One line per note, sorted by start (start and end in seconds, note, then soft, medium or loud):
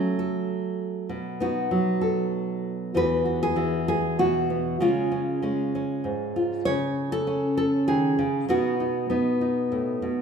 0.00 1.71 F#3 medium
0.00 1.10 A3 medium
0.00 1.10 C#4 medium
0.00 0.18 A4 medium
0.19 1.06 A4 soft
1.09 2.95 B2 medium
1.40 2.92 B3 medium
1.40 2.92 D#4 medium
1.40 2.01 F#4 medium
1.71 2.92 F#3 medium
2.01 2.92 A4 soft
2.94 4.81 E2 medium
2.94 3.55 E3 soft
2.94 4.49 B3 soft
2.94 3.24 F#4 soft
2.94 3.42 B4 medium
3.25 3.55 F#4 soft
3.43 3.87 G#4 medium
3.56 4.80 E3 medium
3.56 4.18 F#4 soft
3.88 4.19 G#4 medium
4.19 4.80 B2 medium
4.19 4.81 F#4 medium
4.50 4.77 B3 soft
4.80 6.04 C#3 medium
4.80 5.41 G#3 soft
4.80 5.11 C#4 soft
4.80 6.35 F4 medium
5.12 5.43 C#4 soft
5.42 6.62 G#3 medium
5.42 5.75 C#4 soft
5.75 6.63 C#4 soft
6.04 6.62 G#2 medium
6.36 6.63 F4 soft
6.65 8.17 C#3 medium
6.65 7.72 C#5 loud
7.12 7.56 A4 medium
7.27 8.46 C#4 medium
7.57 7.87 A4 medium
7.88 8.18 D#3 medium
7.88 8.49 G#4 medium
8.19 8.48 C#3 medium
8.49 10.01 B2 medium
8.49 9.09 B3 soft
8.49 8.79 D#4 soft
8.49 10.04 F#4 medium
8.80 9.10 D#4 soft
9.10 10.22 B3 medium
9.10 9.40 D#4 soft
9.41 10.22 D#4 soft
9.72 10.03 A2 medium
10.02 10.22 B2 medium